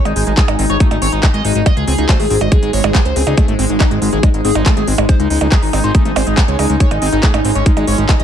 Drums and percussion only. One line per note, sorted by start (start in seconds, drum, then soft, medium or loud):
0.05 closed hi-hat soft
0.05 percussion blips soft
0.16 open hi-hat loud
0.27 closed hi-hat soft
0.37 kick loud
0.37 clap loud
0.37 closed hi-hat medium
0.48 closed hi-hat soft
0.48 percussion blips medium
0.59 open hi-hat loud
0.70 closed hi-hat soft
0.80 kick loud
0.80 closed hi-hat medium
0.91 closed hi-hat soft
0.91 percussion blips soft
1.02 open hi-hat loud
1.12 closed hi-hat soft
1.23 kick loud
1.23 clap loud
1.23 closed hi-hat medium
1.23 percussion blips soft
1.34 closed hi-hat soft
1.45 open hi-hat loud
1.55 closed hi-hat soft
1.66 kick loud
1.66 closed hi-hat medium
1.66 percussion blips medium
1.77 closed hi-hat soft
1.88 open hi-hat loud
1.98 closed hi-hat soft
2.09 kick loud
2.09 clap loud
2.09 closed hi-hat medium
2.09 percussion blips soft
2.20 open hi-hat medium
2.30 open hi-hat loud
2.41 closed hi-hat soft
2.41 percussion blips soft
2.52 kick loud
2.52 closed hi-hat medium
2.63 closed hi-hat soft
2.73 open hi-hat loud
2.84 closed hi-hat soft
2.84 percussion blips medium
2.95 kick loud
2.95 clap loud
2.95 closed hi-hat medium
3.05 closed hi-hat soft
3.16 open hi-hat loud
3.27 closed hi-hat soft
3.27 percussion blips soft
3.37 kick loud
3.37 closed hi-hat medium
3.37 percussion blips soft
3.48 closed hi-hat soft
3.59 open hi-hat loud
3.70 closed hi-hat soft
3.80 kick loud
3.80 clap loud
3.80 closed hi-hat medium
3.80 percussion blips medium
3.91 closed hi-hat soft
4.02 open hi-hat loud
4.13 closed hi-hat soft
4.23 kick loud
4.23 closed hi-hat medium
4.23 percussion blips soft
4.34 closed hi-hat soft
4.45 open hi-hat loud
4.55 closed hi-hat soft
4.55 percussion blips soft
4.66 kick loud
4.66 clap loud
4.66 closed hi-hat medium
4.77 closed hi-hat soft
4.88 open hi-hat loud
4.98 closed hi-hat soft
4.98 percussion blips medium
5.09 kick loud
5.09 closed hi-hat medium
5.20 closed hi-hat soft
5.30 open hi-hat loud
5.41 closed hi-hat soft
5.41 percussion blips soft
5.52 kick loud
5.52 clap loud
5.52 closed hi-hat medium
5.63 open hi-hat medium
5.73 open hi-hat loud
5.73 percussion blips soft
5.84 closed hi-hat soft
5.95 kick loud
5.95 closed hi-hat medium
6.05 closed hi-hat soft
6.16 open hi-hat loud
6.16 percussion blips medium
6.27 closed hi-hat soft
6.37 kick loud
6.37 clap loud
6.37 closed hi-hat medium
6.48 closed hi-hat soft
6.59 open hi-hat loud
6.59 percussion blips soft
6.70 closed hi-hat soft
6.80 kick loud
6.80 closed hi-hat medium
6.91 closed hi-hat soft
6.91 percussion blips soft
7.02 open hi-hat loud
7.13 closed hi-hat soft
7.23 kick loud
7.23 clap loud
7.23 closed hi-hat medium
7.34 closed hi-hat soft
7.34 percussion blips medium
7.45 open hi-hat loud
7.55 closed hi-hat soft
7.66 kick loud
7.66 closed hi-hat medium
7.77 closed hi-hat soft
7.77 percussion blips soft
7.87 open hi-hat loud
7.98 closed hi-hat soft
8.09 kick loud
8.09 clap loud
8.09 closed hi-hat medium
8.09 percussion blips soft
8.20 closed hi-hat soft